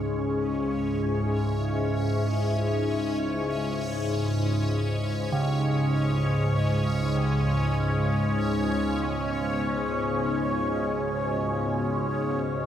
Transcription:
Already playing: synth drone C#2 G#2, ambient pad C#4 G#4 D#5 E5, synth texture C#4 C#5
5.32 bronze metallophone C#3
5.96 ambient pad C#3
6.79 ambient pad B3
7.90 ambient pad C#5
8.81 ambient pad F#4

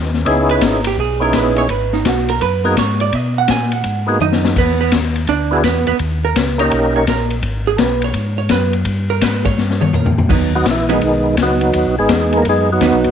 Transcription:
Already playing: tonewheel organ D#2
0.02 snare
0.14 snare
0.25 tonewheel organ C#2 B3 C#4 D#4 E4 G#4, kick, ride
0.49 hollow-body jazz guitar B4, ride
0.61 tonewheel organ G#1, hollow-body jazz guitar A#4, kick, snare, hi-hat pedal, ride
0.84 hollow-body jazz guitar G4, ride
0.97 tonewheel organ B1, hollow-body jazz guitar G#4, kick
1.20 tonewheel organ B3 C#4 D#4 E4 G#4, hollow-body jazz guitar A#4
1.33 tonewheel organ A#1, hollow-body jazz guitar B4, kick, snare, hi-hat pedal, ride
1.56 hollow-body jazz guitar C#5, ride
1.69 tonewheel organ G#1, hollow-body jazz guitar B4, kick, ride
1.93 hollow-body jazz guitar D#4, snare
2.05 tonewheel organ B1, hollow-body jazz guitar F#4, kick, snare, hi-hat pedal, ride
2.29 hollow-body jazz guitar A#4, ride
2.41 tonewheel organ F#2, hollow-body jazz guitar B4, kick, ride
2.64 tonewheel organ A#3 B3 D#4 F#4 G#4, hollow-body jazz guitar A#4
2.77 tonewheel organ G#2, hollow-body jazz guitar C#5, kick, snare, hi-hat pedal, ride
3.00 hollow-body jazz guitar D5, ride
3.13 tonewheel organ B2, hollow-body jazz guitar D#5, kick, ride
3.38 hollow-body jazz guitar F#5
3.48 tonewheel organ A#2, hollow-body jazz guitar G#5, kick, snare, hi-hat pedal, ride
3.72 hollow-body jazz guitar F#5, ride
3.84 tonewheel organ G#2, kick, ride
4.07 tonewheel organ A#3 B3 D#4 F#4 G#4
4.20 tonewheel organ F#2, hollow-body jazz guitar D#4 D#5, hi-hat pedal, high tom
4.33 snare
4.45 snare
4.56 tonewheel organ E2, hollow-body jazz guitar B3 B4, kick, crash
4.81 hollow-body jazz guitar B3 B4
4.91 tonewheel organ D#2, kick, snare, hi-hat pedal, ride
5.16 ride
5.27 tonewheel organ D2, hollow-body jazz guitar D4 D5, kick, ride
5.51 tonewheel organ B3 D4 E4 F#4 G#4
5.63 tonewheel organ E2, hollow-body jazz guitar B3 B4, kick, snare, hi-hat pedal, ride
5.87 tonewheel organ E2, hollow-body jazz guitar B3 B4, ride
5.99 tonewheel organ D#2, kick, ride
6.25 hollow-body jazz guitar A#4
6.35 tonewheel organ C#2, hollow-body jazz guitar B4, kick, snare, hi-hat pedal, ride
6.58 tonewheel organ A#3 C#4 D#4 G4 A#4, hollow-body jazz guitar C#5, ride
6.71 tonewheel organ B1, kick, ride
6.96 hollow-body jazz guitar C#5
7.07 tonewheel organ A#1, hollow-body jazz guitar A#4, kick, snare, hi-hat pedal, ride
7.30 ride
7.43 tonewheel organ G#1, kick, ride
7.67 hollow-body jazz guitar G#4
7.78 tonewheel organ B1, hollow-body jazz guitar B4, kick, snare, hi-hat pedal, ride
8.02 hollow-body jazz guitar C#5, ride
8.14 tonewheel organ G#2, kick, ride
8.38 hollow-body jazz guitar C#5
8.49 tonewheel organ F#2, hollow-body jazz guitar B4, kick, snare, hi-hat pedal, ride
8.73 ride
8.85 tonewheel organ G2, kick, ride
9.10 hollow-body jazz guitar A#4
9.21 tonewheel organ G#2, hollow-body jazz guitar B4, kick, snare, hi-hat pedal, ride
9.45 hollow-body jazz guitar C#5, kick, ride
9.58 tonewheel organ G2, snare
9.70 snare
9.81 hollow-body jazz guitar C#5, high tom
9.93 tonewheel organ A#2, hollow-body jazz guitar A#4, floor tom, hi-hat pedal
10.06 floor tom
10.18 floor tom
10.29 tonewheel organ D#2, hollow-body jazz guitar F#3 B3 D#4, kick, crash
10.55 tonewheel organ F#3 B3 D#4 F#4
10.66 tonewheel organ A#1, kick, snare, hi-hat pedal, ride
10.71 tonewheel organ E3 E4
10.89 tonewheel organ D#3 G#3 B3 D#4, hollow-body jazz guitar F#3 B3 D#4, ride
11.01 tonewheel organ B1, kick, ride
11.37 tonewheel organ C#2, kick, snare, hi-hat pedal, ride
11.42 tonewheel organ F#3 B3 D#4 F#4
11.61 ride
11.73 tonewheel organ D#2, kick, ride
11.86 tonewheel organ B1
11.99 tonewheel organ G#1 G#3 B3 D#4 G#4
12.09 tonewheel organ E2, kick, snare, hi-hat pedal, ride
12.33 ride
12.37 tonewheel organ A#3 A#4
12.45 tonewheel organ F#2, kick, ride
12.49 tonewheel organ G#3 B3 D#4 G#4
12.72 tonewheel organ F#3 B3 D#4 F#4
12.81 tonewheel organ D#2, hollow-body jazz guitar F#3 B3 D#4, kick, snare, hi-hat pedal, ride
12.93 tonewheel organ B1
13.04 tonewheel organ G#1, ride

